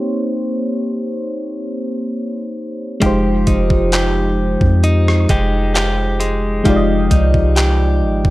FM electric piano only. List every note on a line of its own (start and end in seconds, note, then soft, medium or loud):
0.00 2.51 A#3 medium
0.00 2.52 C4 medium
0.00 2.53 D#4 medium
0.00 2.54 G4 medium
0.00 2.54 C5 medium
0.00 3.04 C#5 medium
3.00 6.61 G#3 medium
3.00 6.61 D#4 medium
3.00 6.62 F4 medium
3.05 6.63 G4 medium
3.05 6.64 C5 medium
6.64 8.30 G#3 medium
6.64 8.30 D#4 medium
6.64 8.30 F4 medium
6.68 8.30 G4 medium
6.68 6.74 D5 medium
6.76 8.30 D#5 medium